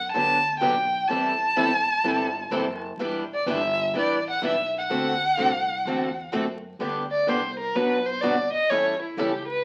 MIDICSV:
0, 0, Header, 1, 7, 480
1, 0, Start_track
1, 0, Key_signature, 1, "major"
1, 0, Tempo, 475813
1, 1107, Time_signature, 4, 2, 24, 8
1, 9726, End_track
2, 0, Start_track
2, 0, Title_t, "Violin"
2, 0, Program_c, 0, 40
2, 0, Note_on_c, 0, 78, 94
2, 112, Note_off_c, 0, 78, 0
2, 124, Note_on_c, 0, 81, 111
2, 581, Note_off_c, 0, 81, 0
2, 604, Note_on_c, 0, 79, 93
2, 1087, Note_on_c, 0, 81, 103
2, 1102, Note_off_c, 0, 79, 0
2, 2849, Note_off_c, 0, 81, 0
2, 3367, Note_on_c, 0, 74, 83
2, 3508, Note_off_c, 0, 74, 0
2, 3547, Note_on_c, 0, 76, 95
2, 3974, Note_off_c, 0, 76, 0
2, 4020, Note_on_c, 0, 74, 92
2, 4295, Note_off_c, 0, 74, 0
2, 4340, Note_on_c, 0, 78, 93
2, 4475, Note_off_c, 0, 78, 0
2, 4513, Note_on_c, 0, 76, 90
2, 4782, Note_off_c, 0, 76, 0
2, 4828, Note_on_c, 0, 78, 97
2, 6368, Note_off_c, 0, 78, 0
2, 9726, End_track
3, 0, Start_track
3, 0, Title_t, "Violin"
3, 0, Program_c, 1, 40
3, 7176, Note_on_c, 1, 74, 76
3, 7353, Note_on_c, 1, 72, 65
3, 7369, Note_off_c, 1, 74, 0
3, 7659, Note_off_c, 1, 72, 0
3, 7665, Note_on_c, 1, 70, 77
3, 7824, Note_on_c, 1, 71, 79
3, 7839, Note_off_c, 1, 70, 0
3, 8130, Note_on_c, 1, 72, 73
3, 8145, Note_off_c, 1, 71, 0
3, 8282, Note_on_c, 1, 74, 78
3, 8298, Note_off_c, 1, 72, 0
3, 8602, Note_off_c, 1, 74, 0
3, 8608, Note_on_c, 1, 75, 90
3, 8776, Note_on_c, 1, 73, 75
3, 8791, Note_off_c, 1, 75, 0
3, 9094, Note_off_c, 1, 73, 0
3, 9104, Note_on_c, 1, 64, 43
3, 9267, Note_on_c, 1, 67, 61
3, 9282, Note_off_c, 1, 64, 0
3, 9561, Note_off_c, 1, 67, 0
3, 9567, Note_on_c, 1, 71, 84
3, 9726, Note_off_c, 1, 71, 0
3, 9726, End_track
4, 0, Start_track
4, 0, Title_t, "Steel-string acoustic guitar"
4, 0, Program_c, 2, 25
4, 3026, Note_on_c, 2, 59, 65
4, 3033, Note_on_c, 2, 67, 76
4, 3249, Note_off_c, 2, 59, 0
4, 3253, Note_off_c, 2, 67, 0
4, 3507, Note_on_c, 2, 59, 77
4, 3511, Note_on_c, 2, 67, 89
4, 3624, Note_off_c, 2, 59, 0
4, 3626, Note_off_c, 2, 67, 0
4, 3974, Note_on_c, 2, 59, 59
4, 3979, Note_on_c, 2, 67, 68
4, 4203, Note_off_c, 2, 59, 0
4, 4205, Note_off_c, 2, 67, 0
4, 4463, Note_on_c, 2, 59, 82
4, 4467, Note_on_c, 2, 67, 93
4, 4582, Note_off_c, 2, 59, 0
4, 4584, Note_off_c, 2, 67, 0
4, 9726, End_track
5, 0, Start_track
5, 0, Title_t, "Steel-string acoustic guitar"
5, 0, Program_c, 3, 25
5, 151, Note_on_c, 3, 50, 67
5, 155, Note_on_c, 3, 59, 63
5, 158, Note_on_c, 3, 54, 69
5, 161, Note_on_c, 3, 62, 70
5, 164, Note_on_c, 3, 67, 70
5, 373, Note_off_c, 3, 50, 0
5, 375, Note_off_c, 3, 59, 0
5, 376, Note_off_c, 3, 54, 0
5, 378, Note_off_c, 3, 62, 0
5, 379, Note_off_c, 3, 67, 0
5, 618, Note_on_c, 3, 50, 79
5, 624, Note_on_c, 3, 54, 85
5, 625, Note_on_c, 3, 59, 84
5, 632, Note_on_c, 3, 67, 83
5, 634, Note_on_c, 3, 62, 84
5, 741, Note_off_c, 3, 50, 0
5, 744, Note_off_c, 3, 54, 0
5, 744, Note_off_c, 3, 59, 0
5, 748, Note_off_c, 3, 67, 0
5, 749, Note_off_c, 3, 62, 0
5, 1092, Note_on_c, 3, 52, 67
5, 1098, Note_on_c, 3, 55, 70
5, 1104, Note_on_c, 3, 60, 76
5, 1106, Note_on_c, 3, 64, 72
5, 1109, Note_on_c, 3, 69, 73
5, 1323, Note_off_c, 3, 52, 0
5, 1326, Note_off_c, 3, 55, 0
5, 1329, Note_off_c, 3, 60, 0
5, 1330, Note_off_c, 3, 64, 0
5, 1332, Note_off_c, 3, 69, 0
5, 1578, Note_on_c, 3, 52, 83
5, 1581, Note_on_c, 3, 60, 97
5, 1583, Note_on_c, 3, 55, 89
5, 1588, Note_on_c, 3, 64, 92
5, 1589, Note_on_c, 3, 69, 107
5, 1701, Note_off_c, 3, 52, 0
5, 1702, Note_off_c, 3, 60, 0
5, 1703, Note_off_c, 3, 55, 0
5, 1706, Note_off_c, 3, 64, 0
5, 1706, Note_off_c, 3, 69, 0
5, 2055, Note_on_c, 3, 52, 66
5, 2061, Note_on_c, 3, 55, 60
5, 2061, Note_on_c, 3, 60, 73
5, 2062, Note_on_c, 3, 64, 72
5, 2069, Note_on_c, 3, 69, 72
5, 2284, Note_off_c, 3, 52, 0
5, 2287, Note_off_c, 3, 55, 0
5, 2287, Note_off_c, 3, 60, 0
5, 2288, Note_off_c, 3, 64, 0
5, 2291, Note_off_c, 3, 69, 0
5, 2535, Note_on_c, 3, 52, 82
5, 2537, Note_on_c, 3, 55, 83
5, 2542, Note_on_c, 3, 60, 88
5, 2548, Note_on_c, 3, 69, 86
5, 2549, Note_on_c, 3, 64, 87
5, 2658, Note_off_c, 3, 52, 0
5, 2660, Note_off_c, 3, 55, 0
5, 2662, Note_off_c, 3, 60, 0
5, 2665, Note_off_c, 3, 64, 0
5, 2665, Note_off_c, 3, 69, 0
5, 3023, Note_on_c, 3, 52, 75
5, 3024, Note_on_c, 3, 55, 76
5, 3028, Note_on_c, 3, 64, 78
5, 3029, Note_on_c, 3, 62, 76
5, 3033, Note_on_c, 3, 71, 72
5, 3248, Note_off_c, 3, 52, 0
5, 3249, Note_off_c, 3, 55, 0
5, 3250, Note_off_c, 3, 64, 0
5, 3251, Note_off_c, 3, 62, 0
5, 3253, Note_off_c, 3, 71, 0
5, 3492, Note_on_c, 3, 52, 86
5, 3499, Note_on_c, 3, 64, 99
5, 3500, Note_on_c, 3, 55, 89
5, 3500, Note_on_c, 3, 62, 94
5, 3501, Note_on_c, 3, 71, 101
5, 3617, Note_off_c, 3, 52, 0
5, 3621, Note_off_c, 3, 55, 0
5, 3621, Note_off_c, 3, 62, 0
5, 3621, Note_off_c, 3, 64, 0
5, 3622, Note_off_c, 3, 71, 0
5, 3979, Note_on_c, 3, 55, 68
5, 3982, Note_on_c, 3, 52, 72
5, 3988, Note_on_c, 3, 62, 65
5, 3993, Note_on_c, 3, 64, 67
5, 3996, Note_on_c, 3, 71, 72
5, 4206, Note_off_c, 3, 55, 0
5, 4207, Note_off_c, 3, 52, 0
5, 4210, Note_off_c, 3, 62, 0
5, 4213, Note_off_c, 3, 64, 0
5, 4214, Note_off_c, 3, 71, 0
5, 4465, Note_on_c, 3, 52, 77
5, 4472, Note_on_c, 3, 55, 80
5, 4473, Note_on_c, 3, 62, 81
5, 4473, Note_on_c, 3, 64, 91
5, 4477, Note_on_c, 3, 71, 83
5, 4583, Note_off_c, 3, 52, 0
5, 4587, Note_off_c, 3, 55, 0
5, 4587, Note_off_c, 3, 62, 0
5, 4587, Note_off_c, 3, 64, 0
5, 4589, Note_off_c, 3, 71, 0
5, 4943, Note_on_c, 3, 50, 66
5, 4947, Note_on_c, 3, 57, 69
5, 4951, Note_on_c, 3, 60, 71
5, 4953, Note_on_c, 3, 66, 77
5, 4955, Note_on_c, 3, 69, 75
5, 5167, Note_off_c, 3, 50, 0
5, 5169, Note_off_c, 3, 57, 0
5, 5172, Note_off_c, 3, 60, 0
5, 5172, Note_off_c, 3, 66, 0
5, 5173, Note_off_c, 3, 69, 0
5, 5422, Note_on_c, 3, 50, 88
5, 5432, Note_on_c, 3, 60, 90
5, 5433, Note_on_c, 3, 57, 95
5, 5437, Note_on_c, 3, 66, 88
5, 5442, Note_on_c, 3, 69, 106
5, 5541, Note_off_c, 3, 50, 0
5, 5546, Note_off_c, 3, 60, 0
5, 5547, Note_off_c, 3, 57, 0
5, 5549, Note_off_c, 3, 66, 0
5, 5552, Note_off_c, 3, 69, 0
5, 5916, Note_on_c, 3, 50, 60
5, 5920, Note_on_c, 3, 57, 68
5, 5923, Note_on_c, 3, 60, 66
5, 5925, Note_on_c, 3, 66, 73
5, 5926, Note_on_c, 3, 69, 72
5, 6134, Note_off_c, 3, 50, 0
5, 6136, Note_off_c, 3, 57, 0
5, 6137, Note_off_c, 3, 60, 0
5, 6139, Note_off_c, 3, 66, 0
5, 6139, Note_off_c, 3, 69, 0
5, 6384, Note_on_c, 3, 50, 82
5, 6386, Note_on_c, 3, 57, 79
5, 6387, Note_on_c, 3, 60, 80
5, 6390, Note_on_c, 3, 69, 80
5, 6391, Note_on_c, 3, 66, 83
5, 6503, Note_off_c, 3, 50, 0
5, 6503, Note_off_c, 3, 57, 0
5, 6504, Note_off_c, 3, 60, 0
5, 6505, Note_off_c, 3, 69, 0
5, 6506, Note_off_c, 3, 66, 0
5, 6859, Note_on_c, 3, 50, 60
5, 6867, Note_on_c, 3, 55, 59
5, 6867, Note_on_c, 3, 59, 61
5, 6874, Note_on_c, 3, 67, 67
5, 6877, Note_on_c, 3, 62, 70
5, 7085, Note_off_c, 3, 50, 0
5, 7089, Note_off_c, 3, 55, 0
5, 7089, Note_off_c, 3, 59, 0
5, 7093, Note_off_c, 3, 67, 0
5, 7095, Note_off_c, 3, 62, 0
5, 7331, Note_on_c, 3, 50, 84
5, 7337, Note_on_c, 3, 55, 82
5, 7343, Note_on_c, 3, 62, 85
5, 7344, Note_on_c, 3, 59, 85
5, 7348, Note_on_c, 3, 67, 87
5, 7456, Note_off_c, 3, 50, 0
5, 7459, Note_off_c, 3, 55, 0
5, 7462, Note_off_c, 3, 59, 0
5, 7462, Note_off_c, 3, 62, 0
5, 7465, Note_off_c, 3, 67, 0
5, 7818, Note_on_c, 3, 54, 59
5, 7819, Note_on_c, 3, 47, 64
5, 7824, Note_on_c, 3, 59, 67
5, 7828, Note_on_c, 3, 71, 66
5, 7829, Note_on_c, 3, 66, 72
5, 7833, Note_on_c, 3, 62, 68
5, 8045, Note_off_c, 3, 54, 0
5, 8046, Note_off_c, 3, 47, 0
5, 8048, Note_off_c, 3, 59, 0
5, 8050, Note_off_c, 3, 71, 0
5, 8051, Note_off_c, 3, 66, 0
5, 8052, Note_off_c, 3, 62, 0
5, 8303, Note_on_c, 3, 47, 80
5, 8304, Note_on_c, 3, 54, 82
5, 8307, Note_on_c, 3, 59, 74
5, 8308, Note_on_c, 3, 66, 93
5, 8314, Note_on_c, 3, 62, 77
5, 8315, Note_on_c, 3, 71, 71
5, 8422, Note_off_c, 3, 47, 0
5, 8423, Note_off_c, 3, 54, 0
5, 8424, Note_off_c, 3, 59, 0
5, 8425, Note_off_c, 3, 66, 0
5, 8428, Note_off_c, 3, 62, 0
5, 8428, Note_off_c, 3, 71, 0
5, 8782, Note_on_c, 3, 52, 64
5, 8784, Note_on_c, 3, 55, 64
5, 8789, Note_on_c, 3, 61, 67
5, 8789, Note_on_c, 3, 64, 69
5, 8795, Note_on_c, 3, 69, 70
5, 9007, Note_off_c, 3, 52, 0
5, 9008, Note_off_c, 3, 55, 0
5, 9011, Note_off_c, 3, 61, 0
5, 9011, Note_off_c, 3, 64, 0
5, 9014, Note_off_c, 3, 69, 0
5, 9259, Note_on_c, 3, 55, 85
5, 9261, Note_on_c, 3, 52, 72
5, 9263, Note_on_c, 3, 61, 89
5, 9266, Note_on_c, 3, 64, 87
5, 9268, Note_on_c, 3, 69, 94
5, 9381, Note_off_c, 3, 52, 0
5, 9381, Note_off_c, 3, 55, 0
5, 9383, Note_off_c, 3, 61, 0
5, 9384, Note_off_c, 3, 64, 0
5, 9385, Note_off_c, 3, 69, 0
5, 9726, End_track
6, 0, Start_track
6, 0, Title_t, "Upright bass"
6, 0, Program_c, 4, 32
6, 0, Note_on_c, 4, 42, 85
6, 130, Note_off_c, 4, 42, 0
6, 153, Note_on_c, 4, 38, 81
6, 615, Note_off_c, 4, 38, 0
6, 627, Note_on_c, 4, 35, 86
6, 1092, Note_off_c, 4, 35, 0
6, 1113, Note_on_c, 4, 33, 70
6, 1575, Note_off_c, 4, 33, 0
6, 1581, Note_on_c, 4, 28, 80
6, 2048, Note_off_c, 4, 28, 0
6, 2057, Note_on_c, 4, 31, 86
6, 2522, Note_off_c, 4, 31, 0
6, 2528, Note_on_c, 4, 30, 81
6, 2993, Note_off_c, 4, 30, 0
6, 2999, Note_on_c, 4, 28, 72
6, 3477, Note_off_c, 4, 28, 0
6, 3492, Note_on_c, 4, 31, 83
6, 3963, Note_off_c, 4, 31, 0
6, 3969, Note_on_c, 4, 33, 78
6, 4442, Note_off_c, 4, 33, 0
6, 4457, Note_on_c, 4, 35, 84
6, 4926, Note_off_c, 4, 35, 0
6, 4945, Note_on_c, 4, 38, 77
6, 5410, Note_off_c, 4, 38, 0
6, 5435, Note_on_c, 4, 36, 81
6, 5895, Note_off_c, 4, 36, 0
6, 5904, Note_on_c, 4, 40, 83
6, 6369, Note_off_c, 4, 40, 0
6, 6386, Note_on_c, 4, 42, 82
6, 6845, Note_off_c, 4, 42, 0
6, 6851, Note_on_c, 4, 38, 69
6, 7323, Note_off_c, 4, 38, 0
6, 7335, Note_on_c, 4, 36, 81
6, 7805, Note_off_c, 4, 36, 0
6, 7830, Note_on_c, 4, 35, 80
6, 8293, Note_off_c, 4, 35, 0
6, 8303, Note_on_c, 4, 31, 79
6, 8595, Note_off_c, 4, 31, 0
6, 8777, Note_on_c, 4, 33, 69
6, 9246, Note_off_c, 4, 33, 0
6, 9251, Note_on_c, 4, 37, 82
6, 9721, Note_off_c, 4, 37, 0
6, 9726, End_track
7, 0, Start_track
7, 0, Title_t, "Muted upright bass strokes"
7, 8625, Note_on_c, 9, 29, 35
7, 8726, Note_off_c, 9, 29, 0
7, 9726, End_track
0, 0, End_of_file